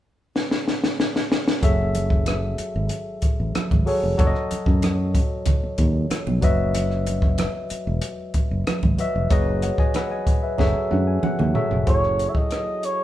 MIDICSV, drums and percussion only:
0, 0, Header, 1, 2, 480
1, 0, Start_track
1, 0, Tempo, 639659
1, 1222, Time_signature, 4, 2, 24, 8
1, 9784, End_track
2, 0, Start_track
2, 0, Title_t, "Drums"
2, 268, Note_on_c, 9, 38, 64
2, 343, Note_off_c, 9, 38, 0
2, 386, Note_on_c, 9, 38, 69
2, 461, Note_off_c, 9, 38, 0
2, 507, Note_on_c, 9, 38, 70
2, 582, Note_off_c, 9, 38, 0
2, 627, Note_on_c, 9, 38, 80
2, 702, Note_off_c, 9, 38, 0
2, 748, Note_on_c, 9, 38, 87
2, 823, Note_off_c, 9, 38, 0
2, 870, Note_on_c, 9, 38, 76
2, 945, Note_off_c, 9, 38, 0
2, 988, Note_on_c, 9, 38, 89
2, 1063, Note_off_c, 9, 38, 0
2, 1107, Note_on_c, 9, 38, 87
2, 1182, Note_off_c, 9, 38, 0
2, 1221, Note_on_c, 9, 36, 104
2, 1221, Note_on_c, 9, 42, 91
2, 1223, Note_on_c, 9, 62, 47
2, 1296, Note_off_c, 9, 36, 0
2, 1296, Note_off_c, 9, 42, 0
2, 1298, Note_off_c, 9, 62, 0
2, 1461, Note_on_c, 9, 42, 64
2, 1465, Note_on_c, 9, 62, 47
2, 1536, Note_off_c, 9, 42, 0
2, 1540, Note_off_c, 9, 62, 0
2, 1578, Note_on_c, 9, 36, 82
2, 1653, Note_off_c, 9, 36, 0
2, 1698, Note_on_c, 9, 42, 70
2, 1698, Note_on_c, 9, 63, 66
2, 1710, Note_on_c, 9, 37, 94
2, 1773, Note_off_c, 9, 42, 0
2, 1773, Note_off_c, 9, 63, 0
2, 1785, Note_off_c, 9, 37, 0
2, 1938, Note_on_c, 9, 42, 68
2, 2013, Note_off_c, 9, 42, 0
2, 2171, Note_on_c, 9, 42, 80
2, 2246, Note_off_c, 9, 42, 0
2, 2415, Note_on_c, 9, 42, 65
2, 2421, Note_on_c, 9, 36, 76
2, 2491, Note_off_c, 9, 42, 0
2, 2496, Note_off_c, 9, 36, 0
2, 2664, Note_on_c, 9, 42, 70
2, 2667, Note_on_c, 9, 37, 104
2, 2667, Note_on_c, 9, 63, 66
2, 2739, Note_off_c, 9, 42, 0
2, 2742, Note_off_c, 9, 37, 0
2, 2742, Note_off_c, 9, 63, 0
2, 2786, Note_on_c, 9, 36, 86
2, 2789, Note_on_c, 9, 63, 70
2, 2861, Note_off_c, 9, 36, 0
2, 2864, Note_off_c, 9, 63, 0
2, 2904, Note_on_c, 9, 46, 43
2, 2979, Note_off_c, 9, 46, 0
2, 3143, Note_on_c, 9, 36, 99
2, 3144, Note_on_c, 9, 42, 88
2, 3147, Note_on_c, 9, 62, 48
2, 3218, Note_off_c, 9, 36, 0
2, 3219, Note_off_c, 9, 42, 0
2, 3222, Note_off_c, 9, 62, 0
2, 3264, Note_on_c, 9, 37, 30
2, 3339, Note_off_c, 9, 37, 0
2, 3383, Note_on_c, 9, 42, 66
2, 3390, Note_on_c, 9, 62, 44
2, 3458, Note_off_c, 9, 42, 0
2, 3465, Note_off_c, 9, 62, 0
2, 3499, Note_on_c, 9, 36, 91
2, 3574, Note_off_c, 9, 36, 0
2, 3620, Note_on_c, 9, 42, 75
2, 3624, Note_on_c, 9, 63, 72
2, 3632, Note_on_c, 9, 37, 80
2, 3695, Note_off_c, 9, 42, 0
2, 3699, Note_off_c, 9, 63, 0
2, 3707, Note_off_c, 9, 37, 0
2, 3861, Note_on_c, 9, 36, 83
2, 3863, Note_on_c, 9, 42, 64
2, 3937, Note_off_c, 9, 36, 0
2, 3938, Note_off_c, 9, 42, 0
2, 4094, Note_on_c, 9, 42, 76
2, 4097, Note_on_c, 9, 64, 68
2, 4105, Note_on_c, 9, 36, 87
2, 4169, Note_off_c, 9, 42, 0
2, 4172, Note_off_c, 9, 64, 0
2, 4180, Note_off_c, 9, 36, 0
2, 4336, Note_on_c, 9, 42, 65
2, 4341, Note_on_c, 9, 36, 76
2, 4345, Note_on_c, 9, 62, 31
2, 4412, Note_off_c, 9, 42, 0
2, 4416, Note_off_c, 9, 36, 0
2, 4420, Note_off_c, 9, 62, 0
2, 4581, Note_on_c, 9, 63, 63
2, 4585, Note_on_c, 9, 42, 80
2, 4587, Note_on_c, 9, 37, 100
2, 4656, Note_off_c, 9, 63, 0
2, 4660, Note_off_c, 9, 42, 0
2, 4662, Note_off_c, 9, 37, 0
2, 4703, Note_on_c, 9, 63, 66
2, 4778, Note_off_c, 9, 63, 0
2, 4820, Note_on_c, 9, 42, 59
2, 4821, Note_on_c, 9, 36, 95
2, 4895, Note_off_c, 9, 42, 0
2, 4896, Note_off_c, 9, 36, 0
2, 5060, Note_on_c, 9, 62, 49
2, 5062, Note_on_c, 9, 42, 92
2, 5135, Note_off_c, 9, 62, 0
2, 5137, Note_off_c, 9, 42, 0
2, 5185, Note_on_c, 9, 37, 28
2, 5260, Note_off_c, 9, 37, 0
2, 5302, Note_on_c, 9, 42, 70
2, 5306, Note_on_c, 9, 62, 49
2, 5377, Note_off_c, 9, 42, 0
2, 5381, Note_off_c, 9, 62, 0
2, 5418, Note_on_c, 9, 36, 82
2, 5493, Note_off_c, 9, 36, 0
2, 5538, Note_on_c, 9, 42, 68
2, 5542, Note_on_c, 9, 63, 76
2, 5550, Note_on_c, 9, 37, 90
2, 5613, Note_off_c, 9, 42, 0
2, 5617, Note_off_c, 9, 63, 0
2, 5625, Note_off_c, 9, 37, 0
2, 5780, Note_on_c, 9, 42, 66
2, 5855, Note_off_c, 9, 42, 0
2, 6014, Note_on_c, 9, 42, 86
2, 6089, Note_off_c, 9, 42, 0
2, 6257, Note_on_c, 9, 42, 66
2, 6261, Note_on_c, 9, 36, 73
2, 6269, Note_on_c, 9, 62, 29
2, 6332, Note_off_c, 9, 42, 0
2, 6336, Note_off_c, 9, 36, 0
2, 6344, Note_off_c, 9, 62, 0
2, 6506, Note_on_c, 9, 42, 79
2, 6507, Note_on_c, 9, 63, 68
2, 6508, Note_on_c, 9, 37, 101
2, 6581, Note_off_c, 9, 42, 0
2, 6582, Note_off_c, 9, 63, 0
2, 6583, Note_off_c, 9, 37, 0
2, 6625, Note_on_c, 9, 63, 75
2, 6627, Note_on_c, 9, 36, 78
2, 6700, Note_off_c, 9, 63, 0
2, 6702, Note_off_c, 9, 36, 0
2, 6743, Note_on_c, 9, 42, 62
2, 6818, Note_off_c, 9, 42, 0
2, 6982, Note_on_c, 9, 42, 85
2, 6983, Note_on_c, 9, 36, 112
2, 6988, Note_on_c, 9, 62, 43
2, 7057, Note_off_c, 9, 42, 0
2, 7058, Note_off_c, 9, 36, 0
2, 7063, Note_off_c, 9, 62, 0
2, 7222, Note_on_c, 9, 42, 73
2, 7231, Note_on_c, 9, 62, 41
2, 7297, Note_off_c, 9, 42, 0
2, 7306, Note_off_c, 9, 62, 0
2, 7341, Note_on_c, 9, 36, 88
2, 7416, Note_off_c, 9, 36, 0
2, 7461, Note_on_c, 9, 42, 65
2, 7465, Note_on_c, 9, 63, 67
2, 7473, Note_on_c, 9, 37, 87
2, 7536, Note_off_c, 9, 42, 0
2, 7540, Note_off_c, 9, 63, 0
2, 7548, Note_off_c, 9, 37, 0
2, 7704, Note_on_c, 9, 36, 89
2, 7705, Note_on_c, 9, 42, 64
2, 7779, Note_off_c, 9, 36, 0
2, 7780, Note_off_c, 9, 42, 0
2, 7942, Note_on_c, 9, 64, 66
2, 7949, Note_on_c, 9, 36, 81
2, 7952, Note_on_c, 9, 38, 46
2, 8017, Note_off_c, 9, 64, 0
2, 8024, Note_off_c, 9, 36, 0
2, 8027, Note_off_c, 9, 38, 0
2, 8186, Note_on_c, 9, 48, 57
2, 8261, Note_off_c, 9, 48, 0
2, 8426, Note_on_c, 9, 47, 85
2, 8427, Note_on_c, 9, 63, 68
2, 8501, Note_off_c, 9, 47, 0
2, 8502, Note_off_c, 9, 63, 0
2, 8546, Note_on_c, 9, 45, 71
2, 8549, Note_on_c, 9, 63, 66
2, 8621, Note_off_c, 9, 45, 0
2, 8624, Note_off_c, 9, 63, 0
2, 8668, Note_on_c, 9, 43, 89
2, 8743, Note_off_c, 9, 43, 0
2, 8787, Note_on_c, 9, 43, 78
2, 8862, Note_off_c, 9, 43, 0
2, 8906, Note_on_c, 9, 42, 76
2, 8908, Note_on_c, 9, 36, 103
2, 8981, Note_off_c, 9, 42, 0
2, 8983, Note_off_c, 9, 36, 0
2, 9031, Note_on_c, 9, 37, 27
2, 9106, Note_off_c, 9, 37, 0
2, 9150, Note_on_c, 9, 42, 64
2, 9225, Note_off_c, 9, 42, 0
2, 9265, Note_on_c, 9, 36, 81
2, 9340, Note_off_c, 9, 36, 0
2, 9385, Note_on_c, 9, 42, 68
2, 9397, Note_on_c, 9, 37, 75
2, 9460, Note_off_c, 9, 42, 0
2, 9472, Note_off_c, 9, 37, 0
2, 9629, Note_on_c, 9, 42, 60
2, 9704, Note_off_c, 9, 42, 0
2, 9784, End_track
0, 0, End_of_file